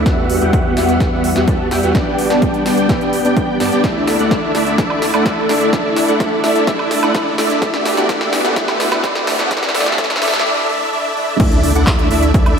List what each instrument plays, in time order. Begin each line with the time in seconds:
0.06 sub bass E2, analog synth pad E3 G3 B3 F#5, supersaw synth B3 F#4 G4 E5 F#5, kick, snare, closed hi-hat
0.30 open hi-hat
0.41 sub bass E2, supersaw synth B3 F#4 G4 E5 G5, closed hi-hat
0.53 sub bass E2, supersaw synth B3 F#4 G4 E5 F#5, kick, closed hi-hat
0.77 sub bass E2, supersaw synth B3 F#4 G4 E5 F#5, snare, open hi-hat
0.89 closed hi-hat
1.00 sub bass E2, supersaw synth B3 F#4 G4 E5 F#5, kick, snare, closed hi-hat
1.12 sub bass E2, supersaw synth B3 F#4 G4 E5 F#5
1.24 open hi-hat
1.36 sub bass E2, supersaw synth B3 F#4 G4 E5 F#5, snare, closed hi-hat
1.48 sub bass E2, supersaw synth B3 F#4 G4 E5 A5, kick, closed hi-hat
1.71 sub bass E2, supersaw synth B3 F#4 G4 E5 G5, snare, open hi-hat
1.83 sub bass E2, supersaw synth B3 F#4 G4 E5 F#5, closed hi-hat
1.95 sub bass G1, supersaw synth B3 D4 G4 D5 G5, analog synth pad B3 D4, kick, snare, closed hi-hat
2.19 open hi-hat
2.30 sub bass G1, supersaw synth B3 D4 G4 D5 A5, snare, closed hi-hat
2.42 sub bass G1, supersaw synth B3 D4 G4 D5 G5, kick, closed hi-hat
2.54 closed hi-hat
2.66 sub bass G1, supersaw synth B3 D4 G4 D5 G5, snare, open hi-hat
2.78 closed hi-hat
2.89 sub bass G1, supersaw synth B3 D4 G4 D5 E5, kick, snare, closed hi-hat
3.01 sub bass G1, supersaw synth B3 D4 G4 D5 G5, closed hi-hat
3.13 open hi-hat
3.25 sub bass G1, supersaw synth B3 D4 G4 D5 G5, closed hi-hat
3.37 sub bass G1, supersaw synth B3 D4 G4 D5 G5, kick, closed hi-hat
3.60 sub bass G2, supersaw synth B3 D4 G4 D5 A5, snare, open hi-hat
3.72 sub bass G1, supersaw synth B3 D4 G4 D5 G5, closed hi-hat
3.84 sub bass D2, analog synth pad D3 D4 E4 A4, supersaw synth A3 D4 E4 D5 E5, kick, snare, closed hi-hat, riser
4.07 snare, open hi-hat
4.19 sub bass D2, supersaw synth A3 D4 E4 D5 F#5, closed hi-hat
4.31 sub bass D2, supersaw synth A3 D4 E4 D5 E5, kick, snare, closed hi-hat
4.55 sub bass D2, supersaw synth A3 D4 E4 D5 E5, snare, open hi-hat
4.67 closed hi-hat
4.78 sub bass D2, supersaw synth A3 D4 E4 D5 E5, kick, snare, closed hi-hat
4.90 high woodblock
5.02 snare, open hi-hat
5.14 sub bass D2, supersaw synth A3 D4 E4 D5 F#5, closed hi-hat, high woodblock
5.26 sub bass D2, supersaw synth A3 D4 E4 D5 E5, kick, snare, closed hi-hat
5.49 sub bass D2, supersaw synth A3 D4 E4 D5 E5, snare, open hi-hat
5.61 closed hi-hat
5.73 sub bass D2, supersaw synth A3 D4 E4 D5 E5, kick, snare, closed hi-hat
5.97 snare, open hi-hat
6.08 sub bass D2, supersaw synth A3 D4 E4 D5 F#5, closed hi-hat
6.20 sub bass D2, supersaw synth A3 D4 E4 D5 E5, kick, snare, closed hi-hat
6.44 sub bass D2, supersaw synth A3 D4 E4 D5 E5, snare, open hi-hat
6.56 closed hi-hat
6.67 sub bass D2, supersaw synth A3 D4 E4 D5 E5, kick, snare, closed hi-hat
6.79 high woodblock
6.91 snare, open hi-hat
7.03 sub bass D2, supersaw synth A3 D4 E4 D5 F#5, high woodblock
7.15 sub bass D2, supersaw synth A3 D4 E4 D5 E5, kick, snare, closed hi-hat
7.38 sub bass D2, supersaw synth A3 D4 E4 D5 E5, snare, open hi-hat
7.50 closed hi-hat
7.62 sub bass E2, analog synth pad E3 B3 F#4 G4, supersaw synth A3 D4 E4 D5 E5, kick, snare, closed hi-hat
7.74 snare
7.85 snare, open hi-hat
7.97 sub bass E2, supersaw synth A3 D4 E4 D5 F#5, snare, closed hi-hat
8.09 sub bass E2, supersaw synth A3 D4 E4 D5 E5, kick, snare, closed hi-hat
8.21 snare
8.33 snare, open hi-hat
8.45 sub bass E2, supersaw synth A3 D4 E4 D5 F#5, snare, closed hi-hat
8.56 sub bass E2, supersaw synth A3 D4 E4 D5 E5, kick, snare, closed hi-hat
8.68 snare, high woodblock
8.80 snare, open hi-hat
8.92 sub bass E2, supersaw synth A3 D4 E4 D5 F#5, snare, high woodblock
9.04 sub bass E2, supersaw synth A3 D4 E4 D5 E5, kick, snare, closed hi-hat
9.15 snare
9.27 snare, open hi-hat
9.39 sub bass E2, supersaw synth A3 D4 E4 D5 F#5, snare, closed hi-hat
9.51 sub bass G1, supersaw synth A3 D4 E4 D5 E5, analog synth pad D4, kick, snare, closed hi-hat
9.57 snare
9.63 snare, closed hi-hat
9.69 snare
9.74 sub bass G1, supersaw synth A3 D4 E4 D5 E5, snare, open hi-hat
9.80 snare
9.86 snare, closed hi-hat
9.92 snare
9.98 sub bass G1, supersaw synth A3 D4 E4 D5 E5, kick, snare, closed hi-hat
10.04 snare
10.10 snare, closed hi-hat
10.16 snare
10.22 sub bass G1, supersaw synth A3 D4 E4 D5 E5, snare, open hi-hat
10.28 snare
10.34 snare, closed hi-hat
10.39 snare
10.45 supersaw synth A3 D4 E4 D5 E5, swell
10.69 supersaw synth A3 D4 E4 D5 E5
10.93 supersaw synth A3 D4 E4 D5 E5
11.16 supersaw synth A3 D4 E4 D5 E5
11.40 sub bass D2, supersaw synth A3 D4 E4 D5 E5, kick, closed hi-hat, crash, impact
11.52 closed hi-hat
11.63 open hi-hat
11.75 sub bass D2, supersaw synth A3 D4 E4 D5 F#5, closed hi-hat
11.87 sub bass D2, supersaw synth A3 D4 E4 D5 E5, kick, clap, closed hi-hat
11.99 closed hi-hat
12.11 sub bass D2, supersaw synth A3 D4 E4 D5 E5, open hi-hat
12.23 closed hi-hat
12.34 sub bass D2, supersaw synth A3 D4 E4 D5 E5, kick, closed hi-hat
12.46 sub bass D2, supersaw synth A3 D4 E4 D5 E5, closed hi-hat, high woodblock